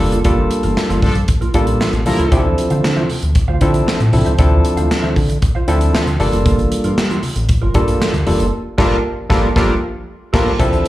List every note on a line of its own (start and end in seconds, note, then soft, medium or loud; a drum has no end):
0.00 0.10 F1 loud
0.00 0.18 G3 medium
0.00 0.18 A#3 medium
0.00 0.18 D4 medium
0.00 0.18 F4 medium
0.00 0.18 A4 medium
0.00 muted clean electric guitar stroke soft
0.12 0.23 F#1 loud
0.12 0.23 A#3 medium
0.12 0.24 F4 medium
0.12 0.23 A4 medium
0.12 closed hi-hat soft
0.24 0.47 G1 loud
0.24 1.00 G3 medium
0.24 0.39 A#3 medium
0.24 1.00 A#3 medium
0.24 1.01 D4 medium
0.24 0.37 F4 medium
0.24 1.01 F4 medium
0.24 1.01 A4 loud
0.24 0.36 A4 medium
0.24 kick loud
0.24 closed hi-hat medium
0.24 muted conga soft
0.24 low conga medium
0.37 muted clean electric guitar stroke medium
0.37 high conga medium
0.51 muted clean electric guitar stroke soft
0.51 closed hi-hat medium
0.63 0.75 G1 loud
0.63 0.75 A#3 soft
0.63 0.76 F4 medium
0.63 0.75 A#4 medium
0.63 closed hi-hat soft
0.63 high conga medium
0.76 muted clean electric guitar stroke medium
0.76 snare loud
0.76 clap medium
0.89 1.01 G1 loud
0.89 1.01 A#3 medium
0.89 1.02 F4 medium
0.89 1.02 A4 medium
0.89 closed hi-hat soft
0.89 high conga medium
1.02 1.24 G2 loud
1.02 1.14 F3 loud
1.02 1.13 D4 loud
1.02 1.13 A4 loud
1.02 muted clean electric guitar stroke medium
1.02 kick loud
1.02 open hi-hat medium
1.02 muted conga soft
1.02 low conga medium
1.15 muted clean electric guitar stroke medium
1.15 closed hi-hat medium
1.15 high conga medium
1.28 muted clean electric guitar stroke soft
1.28 kick loud
1.28 closed hi-hat medium
1.28 muted conga soft
1.41 1.53 A#3 medium
1.41 1.53 F4 medium
1.41 1.53 A#4 medium
1.41 closed hi-hat soft
1.54 1.76 A1 medium
1.54 1.92 G3 medium
1.54 1.69 A#3 medium
1.54 1.92 A#3 medium
1.54 1.92 D4 medium
1.54 1.67 F4 medium
1.54 1.92 F4 medium
1.54 1.92 A4 loud
1.54 1.66 A4 loud
1.54 kick medium
1.54 closed hi-hat medium
1.54 muted conga soft
1.67 muted clean electric guitar stroke soft
1.67 closed hi-hat medium
1.80 1.95 A#3 medium
1.80 1.93 F4 medium
1.80 1.92 A4 medium
1.80 snare loud
1.80 clap medium
1.80 muted conga soft
1.80 high conga medium
1.93 2.04 A1 loud
1.93 muted clean electric guitar stroke soft
1.93 closed hi-hat soft
2.06 2.17 C2 loud
2.06 2.39 F3 loud
2.06 2.25 G3 medium
2.06 2.25 A#3 medium
2.06 2.25 D4 medium
2.06 2.39 E4 loud
2.06 2.25 F4 medium
2.06 2.25 A4 medium
2.06 2.39 A#4 loud
2.06 muted clean electric guitar stroke soft
2.06 open hi-hat medium
2.06 muted conga soft
2.06 high conga medium
2.06 low conga medium
2.19 2.30 C#2 loud
2.19 2.31 A#3 medium
2.19 2.31 F4 medium
2.19 2.30 A4 medium
2.19 closed hi-hat soft
2.32 2.54 D2 loud
2.32 3.07 F3 medium
2.32 3.07 C4 medium
2.32 3.08 D4 medium
2.32 3.08 E4 medium
2.32 2.46 F4 medium
2.32 2.38 G4 medium
2.32 2.45 C5 medium
2.32 2.44 E5 loud
2.32 kick loud
2.32 closed hi-hat medium
2.32 muted conga soft
2.32 low conga medium
2.39 3.11 A4 medium
2.45 muted clean electric guitar stroke medium
2.45 high conga medium
2.58 muted clean electric guitar stroke soft
2.58 closed hi-hat medium
2.58 muted conga soft
2.70 2.82 D3 medium
2.70 2.82 F4 medium
2.70 2.83 C5 medium
2.70 2.82 F5 medium
2.70 closed hi-hat soft
2.70 high conga medium
2.84 3.05 D3 loud
2.84 muted clean electric guitar stroke medium
2.84 snare loud
2.84 clap medium
2.84 muted conga soft
2.96 3.08 F4 medium
2.96 3.09 C5 medium
2.96 3.09 E5 medium
2.96 high conga medium
3.09 muted clean electric guitar stroke soft
3.09 open hi-hat medium
3.09 muted conga soft
3.09 low conga medium
3.22 3.33 D2 medium
3.22 muted clean electric guitar stroke soft
3.22 closed hi-hat medium
3.22 high conga medium
3.35 muted clean electric guitar stroke soft
3.35 kick loud
3.35 closed hi-hat medium
3.35 muted conga soft
3.48 3.59 D2 loud
3.48 3.59 F4 medium
3.48 3.60 C5 medium
3.48 3.60 F5 medium
3.61 3.83 D3 medium
3.61 3.99 F3 medium
3.61 3.99 C4 medium
3.61 3.99 D4 medium
3.61 3.99 E4 medium
3.61 3.75 F4 medium
3.61 3.99 A4 loud
3.61 3.74 C5 medium
3.61 3.73 E5 medium
3.61 kick medium
3.61 closed hi-hat medium
3.74 muted clean electric guitar stroke soft
3.74 closed hi-hat medium
3.86 4.01 F4 medium
3.86 4.00 C5 medium
3.86 3.99 E5 loud
3.86 snare loud
3.86 clap medium
3.86 muted conga soft
3.86 high conga medium
4.00 4.11 A2 medium
4.00 muted clean electric guitar stroke soft
4.00 closed hi-hat soft
4.12 4.24 C2 loud
4.12 4.32 F3 medium
4.12 4.32 C4 medium
4.12 4.32 D4 medium
4.12 4.32 E4 medium
4.12 4.32 A4 medium
4.12 muted clean electric guitar stroke soft
4.12 open hi-hat medium
4.12 muted conga soft
4.12 high conga medium
4.12 low conga medium
4.25 4.37 C#2 medium
4.25 4.37 F4 medium
4.25 4.38 C5 medium
4.25 4.37 E5 medium
4.25 closed hi-hat soft
4.38 4.60 D2 loud
4.38 5.14 F3 medium
4.38 5.14 C4 medium
4.38 5.14 D4 medium
4.38 5.14 E4 medium
4.38 4.53 F4 medium
4.38 5.14 A4 loud
4.38 4.51 C5 medium
4.38 4.50 E5 medium
4.38 kick loud
4.38 closed hi-hat medium
4.38 muted conga soft
4.38 low conga medium
4.51 muted clean electric guitar stroke soft
4.51 high conga medium
4.64 muted clean electric guitar stroke soft
4.64 closed hi-hat medium
4.64 muted conga soft
4.77 4.89 D2 medium
4.77 4.89 F4 medium
4.77 4.89 C5 medium
4.77 4.89 F5 medium
4.77 closed hi-hat soft
4.77 high conga medium
4.90 muted clean electric guitar stroke soft
4.90 snare loud
4.90 clap medium
5.02 5.14 D2 loud
5.02 5.15 F4 medium
5.02 5.16 C5 medium
5.02 5.16 E5 medium
5.02 high conga medium
5.16 5.38 D3 loud
5.16 kick medium
5.16 open hi-hat medium
5.16 muted conga soft
5.16 low conga medium
5.29 muted clean electric guitar stroke soft
5.29 closed hi-hat medium
5.29 high conga medium
5.42 muted clean electric guitar stroke soft
5.42 kick loud
5.42 closed hi-hat medium
5.42 muted conga soft
5.55 5.67 F4 medium
5.55 5.67 C5 medium
5.55 5.66 F5 medium
5.68 5.90 D2 medium
5.68 6.06 F3 medium
5.68 6.06 C4 medium
5.68 6.06 D4 medium
5.68 6.06 E4 medium
5.68 5.83 F4 medium
5.68 6.06 A4 loud
5.68 5.81 C5 medium
5.68 5.80 E5 medium
5.68 closed hi-hat medium
5.68 muted conga soft
5.81 muted clean electric guitar stroke medium
5.81 closed hi-hat medium
5.93 6.08 F4 medium
5.93 6.07 C5 medium
5.93 6.06 E5 medium
5.93 snare loud
5.93 clap medium
5.93 muted conga soft
5.93 high conga medium
6.07 6.18 D2 loud
6.07 muted clean electric guitar stroke medium
6.07 closed hi-hat soft
6.19 6.31 G1 loud
6.19 7.02 G3 medium
6.19 7.03 A#3 medium
6.19 7.03 D4 medium
6.19 7.03 F4 medium
6.19 7.03 A4 loud
6.19 muted clean electric guitar stroke soft
6.19 open hi-hat medium
6.19 high conga medium
6.19 low conga medium
6.33 6.44 F#1 medium
6.33 6.44 A#3 medium
6.33 6.45 F4 medium
6.33 6.44 A4 medium
6.33 closed hi-hat medium
6.45 6.67 G1 loud
6.45 6.60 A#3 medium
6.45 6.58 F4 medium
6.45 6.57 A4 loud
6.45 kick loud
6.45 closed hi-hat medium
6.45 muted conga soft
6.45 low conga medium
6.58 muted clean electric guitar stroke soft
6.58 closed hi-hat soft
6.58 high conga medium
6.72 muted clean electric guitar stroke soft
6.72 closed hi-hat medium
6.72 muted conga soft
6.84 6.95 G2 medium
6.84 6.96 A#3 medium
6.84 6.96 F4 medium
6.84 6.96 A#4 medium
6.84 closed hi-hat soft
6.84 high conga medium
6.97 7.19 G2 loud
6.97 muted clean electric guitar stroke soft
6.97 snare loud
6.97 clap medium
6.97 muted conga soft
7.10 7.22 A#3 medium
7.10 7.22 F4 medium
7.10 7.23 A4 medium
7.10 closed hi-hat soft
7.10 high conga medium
7.23 muted clean electric guitar stroke medium
7.23 open hi-hat medium
7.23 muted conga soft
7.23 low conga medium
7.36 7.47 A1 medium
7.36 muted clean electric guitar stroke soft
7.36 closed hi-hat medium
7.36 high conga medium
7.49 muted clean electric guitar stroke soft
7.49 kick loud
7.49 closed hi-hat medium
7.62 7.73 G1 loud
7.62 7.73 A#3 medium
7.62 7.74 F4 medium
7.62 7.73 A#4 medium
7.74 7.97 G2 medium
7.74 8.12 G3 medium
7.74 7.89 A#3 medium
7.74 8.13 A#3 medium
7.74 8.13 D4 medium
7.74 8.13 F4 medium
7.74 7.88 F4 medium
7.74 8.13 A4 loud
7.74 7.86 A4 medium
7.74 kick medium
7.74 closed hi-hat medium
7.88 muted clean electric guitar stroke soft
7.88 closed hi-hat medium
8.00 8.15 A#3 medium
8.00 8.13 F4 medium
8.00 8.12 A4 loud
8.00 snare loud
8.00 clap medium
8.00 high conga medium
8.13 8.25 D2 medium
8.13 muted clean electric guitar stroke medium
8.13 closed hi-hat soft
8.26 8.38 F1 loud
8.26 8.45 G3 medium
8.26 8.46 A#3 medium
8.26 8.46 D4 medium
8.26 8.46 F4 medium
8.26 8.46 A4 medium
8.26 muted clean electric guitar stroke soft
8.26 open hi-hat medium
8.26 muted conga soft
8.26 high conga medium
8.26 low conga medium
8.39 8.51 F#1 loud
8.39 8.51 A#3 soft
8.39 8.51 F4 medium
8.39 8.51 A4 medium
8.39 closed hi-hat soft
8.78 8.96 G1 loud
8.78 8.96 F3 loud
8.78 8.96 G3 loud
8.78 8.96 A#3 loud
8.78 8.97 A#3 loud
8.78 8.96 D4 loud
8.78 8.96 F4 loud
8.78 8.96 A4 loud
8.78 8.96 A#4 loud
8.78 kick loud
8.78 snare loud
8.78 crash medium
9.29 9.48 G1 loud
9.29 9.48 F3 loud
9.29 9.47 G3 loud
9.29 9.48 A#3 loud
9.29 9.48 D4 loud
9.29 9.48 F4 loud
9.29 9.47 A4 loud
9.29 9.48 A4 loud
9.29 9.48 A#4 loud
9.29 kick loud
9.29 snare loud
9.55 9.74 G1 loud
9.55 9.73 F3 loud
9.55 9.74 G3 loud
9.55 9.73 A#3 loud
9.55 9.74 A#3 loud
9.55 9.73 D4 loud
9.55 9.74 D4 loud
9.55 9.74 F4 loud
9.55 9.74 A4 loud
9.55 9.74 A#4 loud
9.55 kick loud
9.55 snare loud
10.33 10.51 G1 loud
10.33 10.51 F3 loud
10.33 10.51 G3 loud
10.33 10.51 A#3 loud
10.33 10.52 A#3 medium
10.33 10.51 D4 loud
10.33 10.51 F4 loud
10.33 10.51 F4 medium
10.33 10.51 A4 medium
10.33 10.51 A4 loud
10.33 10.51 A#4 loud
10.33 kick loud
10.33 snare loud
10.33 crash medium
10.59 10.81 D2 loud
10.59 10.88 F3 medium
10.59 10.88 C4 medium
10.59 10.88 D4 medium
10.59 10.88 E4 medium
10.59 10.74 F4 medium
10.59 10.88 A4 loud
10.59 10.72 C5 medium
10.59 10.71 E5 loud
10.59 kick loud
10.59 closed hi-hat medium
10.59 low conga medium
10.72 muted clean electric guitar stroke soft
10.72 closed hi-hat soft
10.72 high conga medium